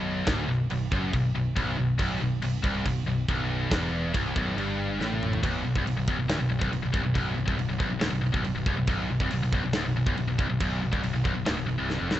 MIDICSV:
0, 0, Header, 1, 5, 480
1, 0, Start_track
1, 0, Key_signature, 2, "minor"
1, 0, Tempo, 430725
1, 303, Time_signature, 4, 2, 24, 8
1, 13593, End_track
2, 0, Start_track
2, 0, Title_t, "Distorted electric guitar"
2, 0, Program_c, 0, 30
2, 0, Note_on_c, 0, 35, 104
2, 286, Note_off_c, 0, 35, 0
2, 290, Note_on_c, 0, 38, 116
2, 530, Note_off_c, 0, 38, 0
2, 542, Note_on_c, 0, 35, 76
2, 735, Note_off_c, 0, 35, 0
2, 790, Note_on_c, 0, 35, 78
2, 979, Note_off_c, 0, 35, 0
2, 1034, Note_on_c, 0, 42, 96
2, 1262, Note_off_c, 0, 42, 0
2, 1270, Note_on_c, 0, 35, 80
2, 1459, Note_off_c, 0, 35, 0
2, 1502, Note_on_c, 0, 35, 77
2, 1696, Note_off_c, 0, 35, 0
2, 1734, Note_on_c, 0, 35, 113
2, 1961, Note_off_c, 0, 35, 0
2, 1974, Note_on_c, 0, 35, 75
2, 2172, Note_off_c, 0, 35, 0
2, 2207, Note_on_c, 0, 35, 114
2, 2449, Note_off_c, 0, 35, 0
2, 2460, Note_on_c, 0, 35, 77
2, 2655, Note_off_c, 0, 35, 0
2, 2697, Note_on_c, 0, 35, 73
2, 2893, Note_off_c, 0, 35, 0
2, 2926, Note_on_c, 0, 36, 103
2, 3168, Note_off_c, 0, 36, 0
2, 3182, Note_on_c, 0, 35, 76
2, 3376, Note_off_c, 0, 35, 0
2, 3418, Note_on_c, 0, 35, 78
2, 3613, Note_off_c, 0, 35, 0
2, 3664, Note_on_c, 0, 35, 95
2, 4123, Note_off_c, 0, 35, 0
2, 4127, Note_on_c, 0, 40, 115
2, 4601, Note_off_c, 0, 40, 0
2, 4606, Note_on_c, 0, 36, 113
2, 4848, Note_off_c, 0, 36, 0
2, 4855, Note_on_c, 0, 35, 111
2, 5093, Note_off_c, 0, 35, 0
2, 5100, Note_on_c, 0, 43, 102
2, 5568, Note_off_c, 0, 43, 0
2, 5573, Note_on_c, 0, 45, 94
2, 6042, Note_off_c, 0, 45, 0
2, 6047, Note_on_c, 0, 35, 111
2, 6276, Note_off_c, 0, 35, 0
2, 6290, Note_on_c, 0, 35, 70
2, 6416, Note_off_c, 0, 35, 0
2, 6420, Note_on_c, 0, 36, 98
2, 6521, Note_off_c, 0, 36, 0
2, 6525, Note_on_c, 0, 35, 76
2, 6638, Note_off_c, 0, 35, 0
2, 6652, Note_on_c, 0, 35, 75
2, 6763, Note_off_c, 0, 35, 0
2, 6776, Note_on_c, 0, 35, 97
2, 6888, Note_off_c, 0, 35, 0
2, 6901, Note_on_c, 0, 35, 77
2, 6996, Note_off_c, 0, 35, 0
2, 7000, Note_on_c, 0, 38, 110
2, 7123, Note_off_c, 0, 38, 0
2, 7127, Note_on_c, 0, 35, 75
2, 7222, Note_off_c, 0, 35, 0
2, 7235, Note_on_c, 0, 35, 72
2, 7330, Note_off_c, 0, 35, 0
2, 7344, Note_on_c, 0, 35, 105
2, 7472, Note_off_c, 0, 35, 0
2, 7486, Note_on_c, 0, 35, 71
2, 7591, Note_off_c, 0, 35, 0
2, 7604, Note_on_c, 0, 35, 73
2, 7711, Note_off_c, 0, 35, 0
2, 7716, Note_on_c, 0, 36, 110
2, 7833, Note_off_c, 0, 36, 0
2, 7838, Note_on_c, 0, 35, 79
2, 7943, Note_off_c, 0, 35, 0
2, 7956, Note_on_c, 0, 35, 119
2, 8175, Note_off_c, 0, 35, 0
2, 8188, Note_on_c, 0, 35, 76
2, 8302, Note_off_c, 0, 35, 0
2, 8307, Note_on_c, 0, 36, 106
2, 8430, Note_off_c, 0, 36, 0
2, 8434, Note_on_c, 0, 35, 69
2, 8554, Note_off_c, 0, 35, 0
2, 8568, Note_on_c, 0, 35, 76
2, 8664, Note_off_c, 0, 35, 0
2, 8678, Note_on_c, 0, 35, 104
2, 8784, Note_off_c, 0, 35, 0
2, 8798, Note_on_c, 0, 35, 81
2, 8903, Note_off_c, 0, 35, 0
2, 8907, Note_on_c, 0, 38, 105
2, 9023, Note_off_c, 0, 38, 0
2, 9027, Note_on_c, 0, 35, 75
2, 9138, Note_off_c, 0, 35, 0
2, 9151, Note_on_c, 0, 35, 81
2, 9260, Note_off_c, 0, 35, 0
2, 9273, Note_on_c, 0, 35, 109
2, 9390, Note_off_c, 0, 35, 0
2, 9403, Note_on_c, 0, 35, 70
2, 9517, Note_off_c, 0, 35, 0
2, 9530, Note_on_c, 0, 35, 74
2, 9650, Note_off_c, 0, 35, 0
2, 9655, Note_on_c, 0, 36, 106
2, 9766, Note_off_c, 0, 36, 0
2, 9770, Note_on_c, 0, 35, 81
2, 9875, Note_off_c, 0, 35, 0
2, 9888, Note_on_c, 0, 35, 123
2, 10126, Note_off_c, 0, 35, 0
2, 10139, Note_on_c, 0, 35, 75
2, 10259, Note_off_c, 0, 35, 0
2, 10264, Note_on_c, 0, 36, 109
2, 10376, Note_off_c, 0, 36, 0
2, 10394, Note_on_c, 0, 35, 78
2, 10492, Note_off_c, 0, 35, 0
2, 10506, Note_on_c, 0, 35, 74
2, 10619, Note_off_c, 0, 35, 0
2, 10632, Note_on_c, 0, 35, 103
2, 10738, Note_off_c, 0, 35, 0
2, 10751, Note_on_c, 0, 35, 76
2, 10860, Note_off_c, 0, 35, 0
2, 10864, Note_on_c, 0, 38, 105
2, 10970, Note_off_c, 0, 38, 0
2, 10975, Note_on_c, 0, 35, 84
2, 11089, Note_off_c, 0, 35, 0
2, 11103, Note_on_c, 0, 35, 76
2, 11201, Note_off_c, 0, 35, 0
2, 11215, Note_on_c, 0, 35, 109
2, 11321, Note_off_c, 0, 35, 0
2, 11334, Note_on_c, 0, 35, 72
2, 11438, Note_off_c, 0, 35, 0
2, 11451, Note_on_c, 0, 35, 79
2, 11565, Note_off_c, 0, 35, 0
2, 11570, Note_on_c, 0, 36, 98
2, 11688, Note_off_c, 0, 36, 0
2, 11692, Note_on_c, 0, 35, 78
2, 11817, Note_off_c, 0, 35, 0
2, 11828, Note_on_c, 0, 35, 108
2, 12043, Note_off_c, 0, 35, 0
2, 12057, Note_on_c, 0, 35, 76
2, 12159, Note_off_c, 0, 35, 0
2, 12164, Note_on_c, 0, 36, 103
2, 12285, Note_off_c, 0, 36, 0
2, 12300, Note_on_c, 0, 35, 77
2, 12394, Note_off_c, 0, 35, 0
2, 12407, Note_on_c, 0, 35, 79
2, 12522, Note_off_c, 0, 35, 0
2, 12536, Note_on_c, 0, 35, 109
2, 12637, Note_off_c, 0, 35, 0
2, 12650, Note_on_c, 0, 35, 75
2, 12759, Note_off_c, 0, 35, 0
2, 12763, Note_on_c, 0, 38, 99
2, 12885, Note_off_c, 0, 38, 0
2, 12892, Note_on_c, 0, 35, 78
2, 12983, Note_off_c, 0, 35, 0
2, 12996, Note_on_c, 0, 35, 75
2, 13123, Note_off_c, 0, 35, 0
2, 13127, Note_on_c, 0, 36, 113
2, 13351, Note_off_c, 0, 36, 0
2, 13356, Note_on_c, 0, 41, 107
2, 13480, Note_off_c, 0, 41, 0
2, 13484, Note_on_c, 0, 35, 104
2, 13593, Note_off_c, 0, 35, 0
2, 13593, End_track
3, 0, Start_track
3, 0, Title_t, "Distorted electric guitar"
3, 0, Program_c, 1, 30
3, 8241, Note_on_c, 1, 35, 78
3, 8349, Note_off_c, 1, 35, 0
3, 8354, Note_on_c, 1, 36, 104
3, 8461, Note_off_c, 1, 36, 0
3, 8952, Note_on_c, 1, 38, 101
3, 9060, Note_off_c, 1, 38, 0
3, 9081, Note_on_c, 1, 35, 83
3, 9192, Note_off_c, 1, 35, 0
3, 9205, Note_on_c, 1, 35, 79
3, 9307, Note_off_c, 1, 35, 0
3, 9320, Note_on_c, 1, 35, 105
3, 9424, Note_off_c, 1, 35, 0
3, 13593, End_track
4, 0, Start_track
4, 0, Title_t, "Picked electric bass"
4, 0, Program_c, 2, 34
4, 0, Note_on_c, 2, 23, 93
4, 268, Note_off_c, 2, 23, 0
4, 304, Note_on_c, 2, 26, 110
4, 527, Note_off_c, 2, 26, 0
4, 544, Note_on_c, 2, 23, 84
4, 767, Note_off_c, 2, 23, 0
4, 788, Note_on_c, 2, 23, 90
4, 1010, Note_off_c, 2, 23, 0
4, 1020, Note_on_c, 2, 30, 104
4, 1245, Note_off_c, 2, 30, 0
4, 1265, Note_on_c, 2, 23, 82
4, 1488, Note_off_c, 2, 23, 0
4, 1502, Note_on_c, 2, 23, 88
4, 1726, Note_off_c, 2, 23, 0
4, 1747, Note_on_c, 2, 23, 105
4, 1969, Note_off_c, 2, 23, 0
4, 1984, Note_on_c, 2, 23, 87
4, 2208, Note_off_c, 2, 23, 0
4, 2214, Note_on_c, 2, 23, 113
4, 2442, Note_off_c, 2, 23, 0
4, 2462, Note_on_c, 2, 23, 85
4, 2687, Note_off_c, 2, 23, 0
4, 2703, Note_on_c, 2, 23, 81
4, 2927, Note_off_c, 2, 23, 0
4, 2934, Note_on_c, 2, 24, 101
4, 3162, Note_off_c, 2, 24, 0
4, 3180, Note_on_c, 2, 23, 84
4, 3406, Note_off_c, 2, 23, 0
4, 3410, Note_on_c, 2, 23, 91
4, 3640, Note_off_c, 2, 23, 0
4, 3658, Note_on_c, 2, 23, 105
4, 4107, Note_off_c, 2, 23, 0
4, 4136, Note_on_c, 2, 28, 114
4, 4586, Note_off_c, 2, 28, 0
4, 4616, Note_on_c, 2, 24, 99
4, 4843, Note_off_c, 2, 24, 0
4, 4859, Note_on_c, 2, 23, 108
4, 5076, Note_off_c, 2, 23, 0
4, 5082, Note_on_c, 2, 31, 98
4, 5539, Note_off_c, 2, 31, 0
4, 5566, Note_on_c, 2, 33, 94
4, 6021, Note_off_c, 2, 33, 0
4, 6054, Note_on_c, 2, 23, 103
4, 6282, Note_off_c, 2, 23, 0
4, 6287, Note_on_c, 2, 23, 72
4, 6406, Note_off_c, 2, 23, 0
4, 6412, Note_on_c, 2, 24, 110
4, 6525, Note_off_c, 2, 24, 0
4, 6531, Note_on_c, 2, 23, 80
4, 6633, Note_off_c, 2, 23, 0
4, 6640, Note_on_c, 2, 23, 82
4, 6762, Note_off_c, 2, 23, 0
4, 6770, Note_on_c, 2, 23, 106
4, 6882, Note_off_c, 2, 23, 0
4, 6889, Note_on_c, 2, 23, 75
4, 6982, Note_off_c, 2, 23, 0
4, 6988, Note_on_c, 2, 26, 105
4, 7107, Note_off_c, 2, 26, 0
4, 7113, Note_on_c, 2, 23, 74
4, 7232, Note_off_c, 2, 23, 0
4, 7239, Note_on_c, 2, 23, 92
4, 7362, Note_off_c, 2, 23, 0
4, 7370, Note_on_c, 2, 23, 100
4, 7466, Note_off_c, 2, 23, 0
4, 7473, Note_on_c, 2, 23, 82
4, 7598, Note_off_c, 2, 23, 0
4, 7610, Note_on_c, 2, 23, 92
4, 7723, Note_off_c, 2, 23, 0
4, 7729, Note_on_c, 2, 24, 107
4, 7833, Note_off_c, 2, 24, 0
4, 7840, Note_on_c, 2, 23, 89
4, 7962, Note_off_c, 2, 23, 0
4, 7974, Note_on_c, 2, 23, 106
4, 8201, Note_off_c, 2, 23, 0
4, 8211, Note_on_c, 2, 23, 83
4, 8328, Note_off_c, 2, 23, 0
4, 8333, Note_on_c, 2, 24, 101
4, 8445, Note_off_c, 2, 24, 0
4, 8452, Note_on_c, 2, 23, 85
4, 8557, Note_off_c, 2, 23, 0
4, 8564, Note_on_c, 2, 23, 88
4, 8684, Note_off_c, 2, 23, 0
4, 8692, Note_on_c, 2, 23, 108
4, 8800, Note_off_c, 2, 23, 0
4, 8807, Note_on_c, 2, 23, 77
4, 8916, Note_off_c, 2, 23, 0
4, 8923, Note_on_c, 2, 26, 103
4, 9044, Note_off_c, 2, 26, 0
4, 9052, Note_on_c, 2, 23, 86
4, 9169, Note_off_c, 2, 23, 0
4, 9180, Note_on_c, 2, 23, 91
4, 9287, Note_off_c, 2, 23, 0
4, 9294, Note_on_c, 2, 23, 93
4, 9409, Note_off_c, 2, 23, 0
4, 9429, Note_on_c, 2, 23, 84
4, 9538, Note_off_c, 2, 23, 0
4, 9546, Note_on_c, 2, 23, 97
4, 9642, Note_off_c, 2, 23, 0
4, 9648, Note_on_c, 2, 24, 105
4, 9767, Note_off_c, 2, 24, 0
4, 9772, Note_on_c, 2, 23, 89
4, 9889, Note_off_c, 2, 23, 0
4, 9896, Note_on_c, 2, 23, 106
4, 10122, Note_off_c, 2, 23, 0
4, 10129, Note_on_c, 2, 23, 91
4, 10247, Note_off_c, 2, 23, 0
4, 10253, Note_on_c, 2, 24, 101
4, 10369, Note_off_c, 2, 24, 0
4, 10380, Note_on_c, 2, 23, 83
4, 10493, Note_off_c, 2, 23, 0
4, 10501, Note_on_c, 2, 23, 90
4, 10602, Note_off_c, 2, 23, 0
4, 10608, Note_on_c, 2, 23, 109
4, 10726, Note_off_c, 2, 23, 0
4, 10734, Note_on_c, 2, 23, 86
4, 10849, Note_off_c, 2, 23, 0
4, 10864, Note_on_c, 2, 26, 93
4, 10975, Note_off_c, 2, 26, 0
4, 10985, Note_on_c, 2, 23, 81
4, 11089, Note_off_c, 2, 23, 0
4, 11096, Note_on_c, 2, 23, 89
4, 11203, Note_off_c, 2, 23, 0
4, 11210, Note_on_c, 2, 23, 100
4, 11327, Note_off_c, 2, 23, 0
4, 11344, Note_on_c, 2, 23, 78
4, 11455, Note_off_c, 2, 23, 0
4, 11471, Note_on_c, 2, 23, 82
4, 11565, Note_off_c, 2, 23, 0
4, 11572, Note_on_c, 2, 24, 89
4, 11688, Note_off_c, 2, 24, 0
4, 11712, Note_on_c, 2, 23, 82
4, 11808, Note_off_c, 2, 23, 0
4, 11815, Note_on_c, 2, 23, 103
4, 12041, Note_off_c, 2, 23, 0
4, 12072, Note_on_c, 2, 23, 80
4, 12173, Note_off_c, 2, 23, 0
4, 12180, Note_on_c, 2, 24, 102
4, 12292, Note_off_c, 2, 24, 0
4, 12312, Note_on_c, 2, 23, 83
4, 12419, Note_off_c, 2, 23, 0
4, 12437, Note_on_c, 2, 23, 79
4, 12527, Note_off_c, 2, 23, 0
4, 12534, Note_on_c, 2, 23, 105
4, 12649, Note_off_c, 2, 23, 0
4, 12685, Note_on_c, 2, 23, 77
4, 12785, Note_off_c, 2, 23, 0
4, 12799, Note_on_c, 2, 26, 98
4, 12902, Note_off_c, 2, 26, 0
4, 12923, Note_on_c, 2, 23, 77
4, 13024, Note_off_c, 2, 23, 0
4, 13039, Note_on_c, 2, 23, 89
4, 13142, Note_off_c, 2, 23, 0
4, 13147, Note_on_c, 2, 24, 89
4, 13367, Note_off_c, 2, 24, 0
4, 13385, Note_on_c, 2, 29, 102
4, 13494, Note_off_c, 2, 29, 0
4, 13513, Note_on_c, 2, 23, 100
4, 13593, Note_off_c, 2, 23, 0
4, 13593, End_track
5, 0, Start_track
5, 0, Title_t, "Drums"
5, 299, Note_on_c, 9, 38, 118
5, 299, Note_on_c, 9, 49, 63
5, 306, Note_on_c, 9, 36, 109
5, 411, Note_off_c, 9, 38, 0
5, 411, Note_off_c, 9, 49, 0
5, 417, Note_off_c, 9, 36, 0
5, 779, Note_on_c, 9, 49, 70
5, 891, Note_off_c, 9, 49, 0
5, 1023, Note_on_c, 9, 36, 110
5, 1135, Note_off_c, 9, 36, 0
5, 1260, Note_on_c, 9, 49, 65
5, 1264, Note_on_c, 9, 36, 98
5, 1371, Note_off_c, 9, 49, 0
5, 1375, Note_off_c, 9, 36, 0
5, 1744, Note_on_c, 9, 36, 110
5, 1749, Note_on_c, 9, 49, 63
5, 1856, Note_off_c, 9, 36, 0
5, 1860, Note_off_c, 9, 49, 0
5, 2215, Note_on_c, 9, 49, 74
5, 2221, Note_on_c, 9, 36, 111
5, 2327, Note_off_c, 9, 49, 0
5, 2332, Note_off_c, 9, 36, 0
5, 2698, Note_on_c, 9, 49, 77
5, 2809, Note_off_c, 9, 49, 0
5, 2941, Note_on_c, 9, 36, 110
5, 3053, Note_off_c, 9, 36, 0
5, 3182, Note_on_c, 9, 49, 69
5, 3183, Note_on_c, 9, 36, 91
5, 3293, Note_off_c, 9, 49, 0
5, 3294, Note_off_c, 9, 36, 0
5, 3661, Note_on_c, 9, 36, 97
5, 3666, Note_on_c, 9, 49, 61
5, 3772, Note_off_c, 9, 36, 0
5, 3777, Note_off_c, 9, 49, 0
5, 4139, Note_on_c, 9, 36, 114
5, 4140, Note_on_c, 9, 38, 123
5, 4140, Note_on_c, 9, 49, 70
5, 4250, Note_off_c, 9, 36, 0
5, 4252, Note_off_c, 9, 38, 0
5, 4252, Note_off_c, 9, 49, 0
5, 4618, Note_on_c, 9, 36, 118
5, 4624, Note_on_c, 9, 49, 66
5, 4730, Note_off_c, 9, 36, 0
5, 4735, Note_off_c, 9, 49, 0
5, 4859, Note_on_c, 9, 36, 110
5, 4970, Note_off_c, 9, 36, 0
5, 5103, Note_on_c, 9, 49, 57
5, 5215, Note_off_c, 9, 49, 0
5, 5584, Note_on_c, 9, 38, 65
5, 5695, Note_off_c, 9, 38, 0
5, 5714, Note_on_c, 9, 48, 71
5, 5825, Note_off_c, 9, 48, 0
5, 5826, Note_on_c, 9, 45, 99
5, 5937, Note_off_c, 9, 45, 0
5, 5943, Note_on_c, 9, 43, 96
5, 6055, Note_off_c, 9, 43, 0
5, 6056, Note_on_c, 9, 36, 113
5, 6062, Note_on_c, 9, 49, 73
5, 6167, Note_off_c, 9, 36, 0
5, 6173, Note_off_c, 9, 49, 0
5, 6413, Note_on_c, 9, 36, 108
5, 6525, Note_off_c, 9, 36, 0
5, 6542, Note_on_c, 9, 49, 68
5, 6654, Note_off_c, 9, 49, 0
5, 6773, Note_on_c, 9, 36, 96
5, 6884, Note_off_c, 9, 36, 0
5, 7015, Note_on_c, 9, 38, 114
5, 7015, Note_on_c, 9, 49, 61
5, 7127, Note_off_c, 9, 38, 0
5, 7127, Note_off_c, 9, 49, 0
5, 7371, Note_on_c, 9, 36, 117
5, 7483, Note_off_c, 9, 36, 0
5, 7498, Note_on_c, 9, 49, 57
5, 7609, Note_off_c, 9, 49, 0
5, 7732, Note_on_c, 9, 36, 118
5, 7843, Note_off_c, 9, 36, 0
5, 7971, Note_on_c, 9, 36, 113
5, 7972, Note_on_c, 9, 49, 63
5, 8082, Note_off_c, 9, 36, 0
5, 8084, Note_off_c, 9, 49, 0
5, 8333, Note_on_c, 9, 36, 113
5, 8444, Note_off_c, 9, 36, 0
5, 8456, Note_on_c, 9, 49, 64
5, 8567, Note_off_c, 9, 49, 0
5, 8693, Note_on_c, 9, 36, 113
5, 8804, Note_off_c, 9, 36, 0
5, 8929, Note_on_c, 9, 38, 122
5, 8929, Note_on_c, 9, 49, 64
5, 9041, Note_off_c, 9, 38, 0
5, 9041, Note_off_c, 9, 49, 0
5, 9294, Note_on_c, 9, 36, 117
5, 9405, Note_off_c, 9, 36, 0
5, 9411, Note_on_c, 9, 49, 59
5, 9522, Note_off_c, 9, 49, 0
5, 9652, Note_on_c, 9, 36, 118
5, 9764, Note_off_c, 9, 36, 0
5, 9886, Note_on_c, 9, 49, 69
5, 9892, Note_on_c, 9, 36, 120
5, 9998, Note_off_c, 9, 49, 0
5, 10004, Note_off_c, 9, 36, 0
5, 10253, Note_on_c, 9, 36, 108
5, 10365, Note_off_c, 9, 36, 0
5, 10371, Note_on_c, 9, 49, 71
5, 10482, Note_off_c, 9, 49, 0
5, 10615, Note_on_c, 9, 36, 105
5, 10727, Note_off_c, 9, 36, 0
5, 10846, Note_on_c, 9, 38, 112
5, 10846, Note_on_c, 9, 49, 67
5, 10958, Note_off_c, 9, 38, 0
5, 10958, Note_off_c, 9, 49, 0
5, 11217, Note_on_c, 9, 36, 109
5, 11328, Note_off_c, 9, 36, 0
5, 11338, Note_on_c, 9, 49, 60
5, 11450, Note_off_c, 9, 49, 0
5, 11577, Note_on_c, 9, 36, 118
5, 11688, Note_off_c, 9, 36, 0
5, 11819, Note_on_c, 9, 36, 105
5, 11819, Note_on_c, 9, 49, 71
5, 11930, Note_off_c, 9, 36, 0
5, 11930, Note_off_c, 9, 49, 0
5, 12177, Note_on_c, 9, 36, 106
5, 12289, Note_off_c, 9, 36, 0
5, 12296, Note_on_c, 9, 49, 68
5, 12407, Note_off_c, 9, 49, 0
5, 12538, Note_on_c, 9, 36, 116
5, 12649, Note_off_c, 9, 36, 0
5, 12775, Note_on_c, 9, 38, 110
5, 12775, Note_on_c, 9, 49, 64
5, 12887, Note_off_c, 9, 38, 0
5, 12887, Note_off_c, 9, 49, 0
5, 13260, Note_on_c, 9, 38, 62
5, 13371, Note_off_c, 9, 38, 0
5, 13495, Note_on_c, 9, 38, 99
5, 13593, Note_off_c, 9, 38, 0
5, 13593, End_track
0, 0, End_of_file